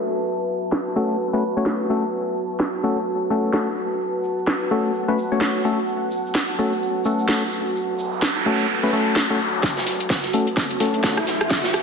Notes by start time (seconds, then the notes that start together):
Already playing: F#4 B4 E5 A5
0.03 shaker
0.16 shaker
0.26 shaker
0.49 shaker
0.63 shaker
0.72 snare, shaker
0.86 shaker
0.96 A3 C#4 F#4 A4, shaker
1.10 shaker
1.20 shaker
1.33 A3 C#4 F#4 B4
1.42 shaker
1.57 A3 C#4 F#4 C#5, shaker
1.66 snare
1.89 A3 C#4 F#4 A4, shaker
2.03 shaker
2.13 shaker
2.26 F#5
2.37 shaker
2.50 shaker
2.60 snare, shaker
2.73 shaker
2.83 A3 C#4 F#4 A4, shaker
2.97 shaker
3.07 shaker
3.30 A3 C#4 F#4 A4, shaker
3.44 shaker
3.53 A3 C#4 F#4 A4, snare, shaker
3.77 shaker
3.91 shaker
4.01 shaker
4.24 shaker
4.38 shaker
4.47 snare, shaker
4.61 shaker
4.71 A3 C#4 F#4 A4, shaker
4.85 shaker
4.94 shaker
5.08 A3 C#4 F#4 B4
5.18 shaker
5.32 A3 C#4 F#4 C#5, shaker
5.41 snare, shaker
5.65 A3 C#4 F#4 A4, shaker
5.79 shaker
5.88 shaker
6.11 shaker
6.26 shaker
6.35 snare, shaker
6.49 shaker
6.58 A3 C#4 F#4 A4, shaker
6.72 shaker
6.82 shaker
7.05 A3 C#4 F#4 A4, shaker
7.19 shaker
7.28 A3 C#4 F#4 A4, snare, shaker
7.52 shaker
7.66 shaker
7.76 noise sweep, shaker
7.99 shaker
8.12 shaker
8.22 snare, shaker
8.36 shaker
8.46 A3 C#4 F#4 A4, shaker
8.59 shaker
8.69 shaker
8.83 A3 C#4 F#4 B4, shaker
8.93 A3 C#4 F#4 A4, shaker
9.07 shaker
9.16 snare, shaker
9.30 A3 C#4 F#4 A4, shaker
9.39 shaker
9.53 shaker
9.63 kick, snare, closed hi-hat, riser
9.77 E5, snare, closed hi-hat
9.86 snare, closed hi-hat, open hi-hat
10.00 closed hi-hat
10.10 kick, snare, closed hi-hat
10.24 snare, closed hi-hat
10.33 A3 C#4 F#4 A4, closed hi-hat, open hi-hat
10.47 closed hi-hat
10.57 kick, snare, closed hi-hat
10.71 closed hi-hat
10.80 A3 C#4 F#4 A4, snare, closed hi-hat, open hi-hat
10.94 closed hi-hat
11.04 A3 C#4 F#4 A4, kick, snare, closed hi-hat
11.17 cross-stick
11.27 snare, closed hi-hat, open hi-hat
11.41 cross-stick, closed hi-hat
11.50 kick, snare, closed hi-hat
11.64 snare, closed hi-hat
11.73 cross-stick, closed hi-hat, open hi-hat